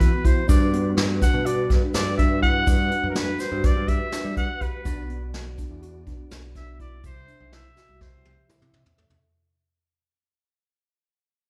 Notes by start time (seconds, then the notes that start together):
Already playing: E3 B3 F#4 B4
0.00 kick, closed hi-hat
0.25 E4 C5, kick, closed hi-hat, shaker
0.48 G2 G3 D4 F#4 B4 D5, kick, closed hi-hat, shaker
0.73 B3, closed hi-hat
0.97 G2, snare, closed hi-hat, shaker
1.22 D4 F#5, kick, snare, closed hi-hat, shaker
1.34 B2
1.46 F#4 D5, closed hi-hat, shaker
1.70 G2 D4, kick, snare, closed hi-hat
1.94 G2 D5, snare, closed hi-hat, shaker
2.17 D4 E5, kick, closed hi-hat, shaker
2.42 E4 F#5, kick, closed hi-hat
2.67 G2, kick, closed hi-hat, shaker
2.91 D4, closed hi-hat
3.04 F#2
3.10 A#4
3.15 D4 B4, snare, closed hi-hat, shaker
3.39 F#4 C5, snare, closed hi-hat, shaker
3.52 G2
3.64 D5, kick, closed hi-hat, shaker
3.76 G2
3.88 G4 E5, kick, closed hi-hat
4.12 D4, snare, closed hi-hat, shaker
4.25 G3
4.37 F#5, kick, closed hi-hat, shaker
4.61 G4 B4, kick, closed hi-hat
4.84 B1 B3 D4 F#4 D5, kick, closed hi-hat, shaker
5.10 B3, closed hi-hat
5.34 B1, snare, closed hi-hat, shaker
5.58 D4, kick, closed hi-hat, shaker
5.71 E2
5.82 F#4, closed hi-hat, shaker
6.07 B1 D4, kick, closed hi-hat
6.31 B1, snare, closed hi-hat, shaker
6.55 D4 E5, kick, snare, closed hi-hat, shaker
6.80 E4 D5, kick, closed hi-hat
7.03 C2 B2 C3 C5 E5, kick, closed hi-hat, shaker
7.28 D4, closed hi-hat, shaker
7.41 B1
7.52 E4 E5, snare, closed hi-hat
7.76 F#4, snare, shaker
7.89 C2
8.01 C5, kick, snare
8.13 C2
8.25 G4, high tom
8.49 E4, mid tom, shaker
8.62 C3, mid tom
8.74 mid tom
8.86 floor tom
8.98 A4, floor tom
9.10 floor tom